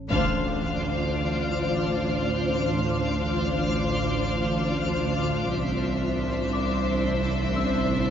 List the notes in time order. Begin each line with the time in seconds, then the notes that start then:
0.10 A1 D2 D4 F4 C5 D5 F5 F6, impact
5.52 A1 C2 D4 E4 C5 D5 E5
6.53 D5 D6
7.56 E6